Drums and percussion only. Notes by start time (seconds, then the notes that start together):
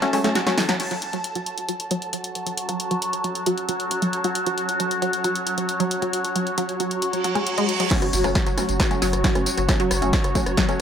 0.02 snare, closed hi-hat
0.13 open hi-hat
0.24 snare, closed hi-hat
0.35 snare, closed hi-hat
0.47 snare, closed hi-hat
0.58 snare, open hi-hat
0.69 snare, closed hi-hat
0.80 closed hi-hat, crash
0.91 closed hi-hat
1.02 closed hi-hat
1.13 closed hi-hat
1.24 closed hi-hat
1.35 closed hi-hat
1.46 closed hi-hat
1.58 closed hi-hat
1.69 closed hi-hat
1.80 closed hi-hat
1.91 closed hi-hat
2.02 closed hi-hat
2.13 closed hi-hat
2.24 closed hi-hat
2.35 closed hi-hat
2.47 closed hi-hat
2.58 closed hi-hat
2.69 closed hi-hat
2.80 closed hi-hat
2.91 closed hi-hat
3.02 closed hi-hat
3.13 closed hi-hat
3.24 closed hi-hat
3.35 closed hi-hat
3.46 closed hi-hat
3.58 closed hi-hat
3.69 closed hi-hat
3.80 closed hi-hat
3.91 closed hi-hat
4.02 closed hi-hat
4.13 closed hi-hat
4.24 closed hi-hat
4.35 closed hi-hat
4.46 closed hi-hat
4.58 closed hi-hat
4.69 closed hi-hat
4.80 closed hi-hat
4.91 closed hi-hat
5.02 closed hi-hat
5.13 closed hi-hat
5.24 closed hi-hat
5.36 closed hi-hat
5.47 closed hi-hat
5.58 closed hi-hat
5.69 closed hi-hat
5.80 closed hi-hat
5.91 closed hi-hat
6.02 closed hi-hat
6.13 closed hi-hat
6.25 closed hi-hat
6.36 closed hi-hat
6.47 closed hi-hat
6.58 closed hi-hat
6.69 closed hi-hat
6.80 closed hi-hat
6.91 closed hi-hat
7.02 closed hi-hat
7.13 closed hi-hat
7.24 closed hi-hat
7.35 closed hi-hat
7.47 closed hi-hat
7.58 closed hi-hat
7.69 closed hi-hat
7.80 closed hi-hat
7.91 kick, snare, closed hi-hat, crash, tambourine
8.02 cross-stick, closed hi-hat, tambourine
8.13 open hi-hat, tambourine
8.24 cross-stick, closed hi-hat, tambourine
8.35 kick, snare, closed hi-hat, tambourine
8.47 closed hi-hat, tambourine
8.58 cross-stick, open hi-hat, tambourine
8.69 closed hi-hat, tambourine
8.80 kick, cross-stick, snare, closed hi-hat, tambourine
8.91 closed hi-hat, tambourine
9.02 open hi-hat, tambourine
9.13 cross-stick, closed hi-hat, tambourine
9.24 kick, snare, closed hi-hat, tambourine
9.35 cross-stick, closed hi-hat, tambourine
9.46 open hi-hat, tambourine
9.57 closed hi-hat, tambourine
9.69 kick, cross-stick, snare, closed hi-hat, tambourine
9.80 closed hi-hat, tambourine
9.91 cross-stick, open hi-hat, tambourine
10.02 closed hi-hat, tambourine
10.13 kick, snare, closed hi-hat, tambourine
10.24 cross-stick, closed hi-hat, tambourine
10.35 kick, open hi-hat, tambourine
10.46 cross-stick, closed hi-hat, tambourine
10.57 kick, snare, closed hi-hat, tambourine
10.69 closed hi-hat, tambourine